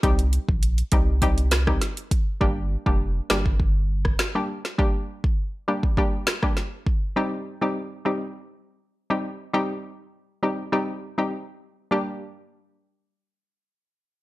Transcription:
<<
  \new Staff \with { instrumentName = "Synth pluck" } { \time 4/4 \key g \minor \tempo 4 = 101 <g c' ees' g'>4. <g c' ees' g'>8 <g c' ees' g'>8. <g c' ees' g'>16 r4 | <g bes d' g'>8. <g bes d' g'>8. <g bes d' g'>8 r4 r16 <g bes d' g'>16 r8 | <g bes d' g'>4. <g bes d' g'>8 <g bes d' g'>8. <g bes d' g'>16 r4 | <g c' ees' g'>8. <g c' ees' g'>8. <g c' ees' g'>8 r4 r16 <g c' ees' g'>16 r8 |
<g c' ees' g'>4. <g c' ees' g'>8 <g c' ees' g'>8. <g c' ees' g'>16 r4 | <g bes d' g'>1 | }
  \new Staff \with { instrumentName = "Sub bass" } { \clef bass \time 4/4 \key g \minor c,8. bes,,8. c,4. r4 | g,,8. f,,8. g,,4. r4 | r1 | r1 |
r1 | r1 | }
  \new DrumStaff \with { instrumentName = "Drums" } \drummode { \time 4/4 <hh bd>16 hh16 hh16 bd16 hh16 hh16 <hh bd>8 <hh bd>16 hh16 <hh ss sn>16 <bd ss>16 <hh sn>16 hh16 <hh bd>8 | bd8. bd16 r8 <ss sn>16 bd16 bd8. <bd ss>16 <ss sn>8. sn16 | bd8. bd16 r8. bd16 bd8 <ss sn>16 <bd ss>16 sn8 bd8 | r4 r4 r4 r4 |
r4 r4 r4 r4 | r4 r4 r4 r4 | }
>>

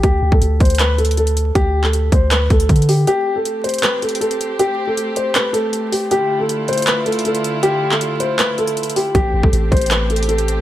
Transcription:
<<
  \new Staff \with { instrumentName = "Grand piano" } { \time 4/4 \key d \dorian \tempo 4 = 158 g'8. a'8. c''8 b'8 a'8 a'4 | g'8. a'8. c''8 b'8 a'4 g'8 | g'8. a'8. c''8 b'8 a'8 a'4 | g'8. a'8. c''8 b'8 a'4 g'8 |
g'8. a'8. c''8 b'8 a'8 a'4 | g'8. a'8. c''8 b'8 a'4 g'8 | g'8. a'8. c''8 b'8 a'8 a'4 | }
  \new Staff \with { instrumentName = "String section" } { \time 4/4 \key d \dorian << { r1 | r1 | <c' g'>1~ | <c' g'>1 |
<d e' f'>1~ | <d e' f'>1 | <c' g'>1 | } \\ { r1 | r1 | a1~ | a1~ |
a1~ | a1 | a1 | } >> }
  \new Staff \with { instrumentName = "808-style bass" } { \clef bass \time 4/4 \key d \dorian d,8 d,16 d,16 d,8 d,2~ d,8 | d,4. d,4 d,8 d4 | r1 | r1 |
r1 | r1 | a,,8 a,,16 a,,16 a,,8 a,,2~ a,,8 | }
  \new DrumStaff \with { instrumentName = "Drums" } \drummode { \time 4/4 <hh bd>8. bd16 hh8 <hh bd>32 hh32 hh32 hh32 \tuplet 3/2 { <hc hh>16 r16 r16 hh16 hh16 hh16 } hh16 hh16 hh8 | <hh bd>8. hc16 hh8 <hh bd>8 <hc hh>8 <hh bd>16 hh16 \tuplet 3/2 { <hh bd>16 hh16 hh16 hho16 r16 r16 } | hh4 hh8 hh32 hh32 hh32 hh32 \tuplet 3/2 { <hc hh>16 r16 r16 hh16 hh16 hh16 } hh16 hh16 hh8 | hh4 hh8 hh8 <hc hh>8 hh8 hh8 hho8 |
hh4 hh8 hh32 hh32 hh32 hh32 \tuplet 3/2 { <hc hh>16 r16 r16 hh16 hh16 hh16 } hh16 hh16 hh8 | hh8. hc16 hh8 hh8 <hc hh>8 hh16 hh16 \tuplet 3/2 { hh16 hh16 hh16 hho16 r16 r16 } | <hh bd>8. bd16 hh8 <hh bd>32 hh32 hh32 hh32 \tuplet 3/2 { <hc hh>16 r16 r16 hh16 hh16 hh16 } hh16 hh16 hh8 | }
>>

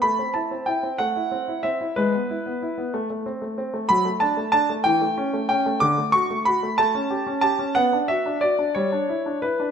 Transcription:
\new Staff \with { instrumentName = "Grand piano" } { \time 6/8 \key a \dorian \tempo 4. = 62 << { b''8 a''8 g''8 fis''4 e''8 | b'2~ b'8 r8 | \key d \major b''8 a''8 a''8 g''4 g''8 | d'''8 cis'''8 b''8 a''4 a''8 |
fis''8 e''8 d''8 cis''4 b'8 | } \\ { a16 c'16 e'16 c'16 e'16 c'16 a16 e'16 c'16 e'16 c'16 e'16 | gis16 b16 e'16 b16 e'16 b16 a16 a16 c'16 a16 c'16 a16 | fis16 a16 d'16 a16 d'16 a16 e16 a16 cis'16 a16 cis'16 a16 | d16 a16 fis'16 a16 fis'16 a16 a16 cis'16 g'16 cis'16 g'16 cis'16 |
b16 d'16 fis'16 d'16 fis'16 d'16 g16 d'16 e'16 d'16 e'16 d'16 | } >> }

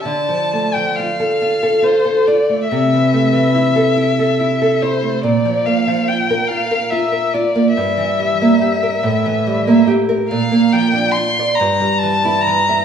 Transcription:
<<
  \new Staff \with { instrumentName = "Violin" } { \time 6/8 \key d \minor \tempo 4. = 47 a''8. g''16 f''4 c''8 d''8 | e''2~ e''8 c''8 | d''8 f''8 g''8 f''8 e''8 d''8 | e''2~ e''8 r8 |
f''8 g''8 c'''8 bes''8 a''8 bes''8 | }
  \new Staff \with { instrumentName = "Nylon-string guitar" } { \time 6/8 \key d \minor d16 f16 a16 f16 f'16 a'16 f'16 a'16 f'16 a'16 f'16 a16 | c16 e16 a16 e16 e'16 a'16 e'16 a'16 e'16 a'16 e'16 a16 | bes,16 f16 bes16 f16 f'16 bes'16 f'16 bes'16 f'16 bes'16 f'16 bes16 | g,16 e16 g16 bes16 g'16 bes'16 a,16 e16 g16 bes16 g'16 bes'16 |
bes,16 bes16 f16 d'16 f'16 d''16 g,16 g16 e16 e'16 e16 e''16 | }
>>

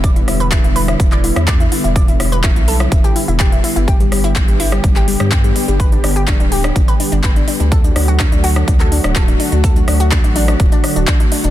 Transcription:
<<
  \new Staff \with { instrumentName = "Synth pluck" } { \time 4/4 \key e \minor \tempo 4 = 125 d''16 e'16 e'16 b'16 e'16 e'16 b'16 e'16 e'16 d''16 e'16 e'16 d''16 e'16 e'16 e'16 | d''16 e'16 e'16 b'16 e'16 e'16 a'16 e'16 e'16 g'16 e'16 e'16 g'16 e'16 e'16 e'16 | g'16 g16 g16 e'16 g16 g16 e'16 g16 g16 g'16 g16 g16 g'16 g16 g16 g16 | b'16 d'16 d'16 g'16 d'16 d'16 g'16 d'16 d'16 b'16 d'16 d'16 b'16 d'16 d'16 d'16 |
a'16 d'16 d'16 fis'16 d'16 d'16 fis'16 d'16 d'16 a'16 d'16 d'16 a'16 d'16 d'16 d'16 | a'16 d'16 d'16 fis'16 d'16 d'16 d'16 d'16 d'16 d'16 d'16 d'16 d'16 d'16 d'16 d'16 | }
  \new Staff \with { instrumentName = "Analog synth pad" } { \clef bass \time 4/4 \key e \minor <d g b e'>1~ | <d g b e'>1 | <d g b g'>1~ | <d g b g'>1 |
<d fis a fis'>1~ | <d fis a fis'>1 | }
  \new Staff \with { instrumentName = "Sub bass" } { \clef bass \time 4/4 \key e \minor e,,8 e,,8. e,,8. e,,8. e,8. r16 e,,16~ | e,,8 e,,8. b,,8. e,,16 r8 e,,8. r16 g,,16~ | g,,8 g,,8. g,,8. g,,8. g,8. r16 g,,16~ | g,,8 g,,8. d,,8. g,,16 r8 g,,8. r16 d,16~ |
d,8 d,8. d,8. d,8. d,,8. r16 d,16~ | d,8 d,8. a,,8. d,,16 r8 d,,16 r8. e,,16 | }
  \new DrumStaff \with { instrumentName = "Drums" } \drummode { \time 4/4 <hh bd>16 hh16 <hho ss>16 hh16 <hc hh bd>16 hh16 hho16 ss16 <hh bd>16 <hc hh>16 hho16 <hh ss>16 <hc hh bd>16 hh16 hho16 hh16 | <hh bd>16 hh16 <hho ss>16 hh16 <hc hh bd>16 hh16 hho16 ss16 <hh bd>16 hh16 hho16 hh16 <hc hh bd>16 hh16 hho16 hh16 | <hh bd>16 hh16 <hho ss>16 hh16 <hc hh bd>16 hh16 hho16 ss16 <hh bd>16 <hc hh>16 hho16 <hh ss>16 <hc hh bd>16 hh16 hho16 hh16 | <hh bd>16 hh16 <hho ss>16 hh16 <hc hh bd>16 hh16 hho16 <hh ss>16 <hh bd>16 hh16 hho16 hh16 <hc hh bd>16 hh16 hho16 hh16 |
<hh bd>16 hh16 <hho ss>16 hh16 <hc hh bd>16 hh16 hho16 ss16 <hh bd>16 <hc hh>16 hho16 <hh ss>16 <hc hh bd>16 hh16 hho16 hh16 | <hh bd>16 hh16 <hho ss>16 hh16 <hc hh bd>16 hh16 hho16 <hh ss>16 <hh bd>16 hh16 <hho ss>16 hh16 <hc hh bd>16 hh16 hho16 hh16 | }
>>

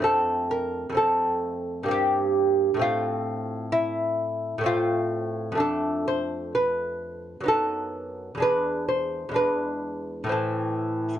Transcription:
<<
  \new Staff \with { instrumentName = "Lute" } { \time 3/4 \key f \major \tempo 4 = 64 a'8 bes'8 a'4 g'4 | f'4 e'4 f'4 | \key e \phrygian a'8 c''8 b'4 a'4 | b'8 c''8 b'4 a'4 | }
  \new Staff \with { instrumentName = "Lute" } { \time 3/4 \key f \major <f, a c'>4 <f, a c'>4 <g, bes c'>4 | <a, a c'>2 <a, a c'>4 | \key e \phrygian <f, a d'>2 <fis, b dis'>4 | <e, gis d'>4 <e, gis d'>4 <a, e c'>4 | }
>>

